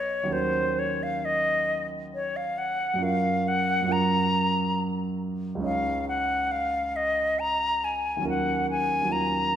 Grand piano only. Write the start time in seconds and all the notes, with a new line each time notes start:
Already playing: B1 F#3 B3 F4 A#4
0.23 D#2 F#3 C#4
0.29 F#4 A#4
2.94 F#2 F#3 C#4
3.00 F4 A#4
3.82 F#2 F#3 C#4
3.87 F4 A#4
5.55 C#2 G#3
5.59 C#4 D#4
5.64 C#5
8.17 D#2 F#3
8.22 C#4 F4 A#4
9.01 D#2 F#3
9.06 C#4 F4
9.10 A#4